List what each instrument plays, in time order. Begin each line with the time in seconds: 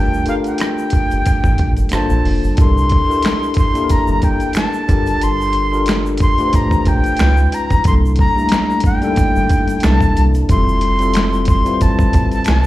Already playing: analog synth bass G1, tine electric piano A3 D4 F4 G4 A#4, flute G5
0.13 shaker
0.26 tine electric piano D4 F4 G4 A4 A#4, flute F5, closed hi-hat, shaker
0.44 flute G5, closed hi-hat, shaker
0.58 finger snap, cross-stick, closed hi-hat, shaker
0.78 shaker
0.90 analog synth bass G1, kick, closed hi-hat, shaker
1.11 analog synth bass G1, closed hi-hat, shaker
1.26 kick, closed hi-hat, shaker
1.44 analog synth bass A1, kick, shaker
1.58 analog synth bass A#1, kick, closed hi-hat
1.77 analog synth bass G1, closed hi-hat, shaker
1.89 analog synth bass G1, tine electric piano A#3 D4 F4 A4, finger snap, cross-stick, closed hi-hat, shaker
1.94 tine electric piano C5, flute A5
2.10 analog synth bass A#1, shaker
2.25 analog synth bass F1, open hi-hat
2.44 analog synth bass G1, shaker
2.56 analog synth bass C2, tine electric piano D4 E4 G4 A4 A#4, kick, closed hi-hat, shaker
2.60 flute C6
2.78 shaker
2.89 kick, closed hi-hat
3.07 tine electric piano D4 E4 G4 A4 A#4, shaker
3.22 finger snap, snare, closed hi-hat, shaker
3.43 shaker
3.54 kick, closed hi-hat, shaker
3.59 flute C6
3.74 tine electric piano A#3 D4 E4 G4 A4, closed hi-hat, shaker
3.84 tine electric piano A#4
3.89 analog synth bass G1, flute A#5, kick, closed hi-hat, shaker
4.07 analog synth bass G1, shaker
4.22 flute G5, kick, closed hi-hat, shaker
4.40 closed hi-hat, shaker
4.53 flute A5, finger snap, closed hi-hat, shaker
4.57 finger snap, snare
4.73 shaker
4.88 analog synth bass G1, tine electric piano D4 F4 G4 A4 A#4, kick, closed hi-hat, shaker
5.06 closed hi-hat, shaker
5.21 analog synth bass G1, flute C6, closed hi-hat, shaker
5.41 shaker
5.53 closed hi-hat
5.72 tine electric piano D4 F4 G4 A4 A#4, shaker
5.86 finger snap, snare, closed hi-hat, shaker
6.06 shaker
6.18 kick, closed hi-hat, shaker
6.22 flute C6
6.38 tine electric piano A3 D4 F4 G4 B4, closed hi-hat, shaker
6.48 tine electric piano C5
6.53 analog synth bass A1, flute A#5, kick, closed hi-hat, shaker
6.71 kick, shaker
6.85 analog synth bass A#1, flute G5, kick, closed hi-hat, shaker
7.04 closed hi-hat, shaker
7.17 tine electric piano G#3 C#4, finger snap, snare, closed hi-hat, shaker
7.21 analog synth bass C#2, tine electric piano D#4 F4 B4
7.37 shaker
7.52 flute A#5, closed hi-hat, shaker
7.70 analog synth bass G1, kick, closed hi-hat, shaker
7.84 analog synth bass C2, tine electric piano G3 A#3 D4 E4 A4, flute C6, kick, closed hi-hat, shaker
8.05 shaker
8.16 kick, closed hi-hat
8.20 flute A#5
8.36 tine electric piano G3 A3 A#3 D4 E4, shaker
8.49 finger snap, snare, closed hi-hat, shaker
8.70 shaker
8.80 kick, closed hi-hat
8.85 flute G5, shaker
9.01 tine electric piano G3 A#3 D4 D#4 A4, closed hi-hat, shaker
9.10 tine electric piano E4
9.16 analog synth bass G1, kick, closed hi-hat, shaker
9.36 analog synth bass G1, shaker
9.49 kick, closed hi-hat, shaker
9.68 closed hi-hat, shaker
9.80 tine electric piano G3 A#3 D4, finger snap, snare, closed hi-hat, shaker
9.84 analog synth bass C2, tine electric piano E4 A4, flute A5
10.01 kick, shaker
10.17 analog synth bass C2, closed hi-hat, shaker
10.34 closed hi-hat, shaker
10.48 analog synth bass F1, tine electric piano G3 C4 E4 F4 A4, flute C6, kick, closed hi-hat, shaker
10.69 shaker
10.81 closed hi-hat
10.99 tine electric piano G3 C4 E4 F4 A4, closed hi-hat, shaker
11.14 finger snap, snare, closed hi-hat, shaker
11.33 shaker
11.45 flute C6, kick, closed hi-hat, shaker
11.65 tine electric piano G3 C4 E4 F4 B4, closed hi-hat, shaker
11.74 tine electric piano C5
11.81 analog synth bass G1, flute A5, kick, closed hi-hat, shaker
11.99 kick, shaker
12.13 analog synth bass A1, kick, closed hi-hat, shaker
12.32 flute A5, closed hi-hat, shaker
12.44 finger snap, closed hi-hat, shaker
12.48 analog synth bass C2, flute A5, finger snap, snare